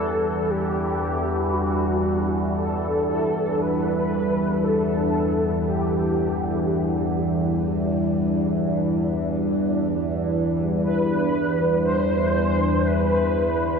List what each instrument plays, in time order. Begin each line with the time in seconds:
Already playing: synth drone E2 E3, ambient pad E3 G3 D4, soft synth lead A4
0.50 soft synth lead G4
1.53 soft synth lead F#4
2.57 soft synth lead A4
3.61 synth drone E2 E3, soft synth lead B4
4.64 soft synth lead A4
5.69 soft synth lead G4
10.81 soft synth lead B4
11.84 soft synth lead C5
12.87 soft synth lead B4